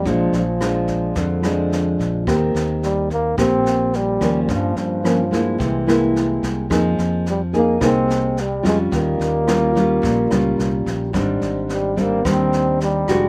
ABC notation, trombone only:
X:1
M:4/4
L:1/16
Q:1/4=108
K:Eb
V:1 name="Trombone" clef=bass
F,2 F,6 D,6 z2 | z4 G,2 B,2 C4 G,3- G,/2 G,/2 | F,2 F,6 =E,6 z2 | z4 G,2 B,2 C4 G,2 A,2 |
B,12- B,2 z2 | z4 G,2 B,2 C4 G,4 |]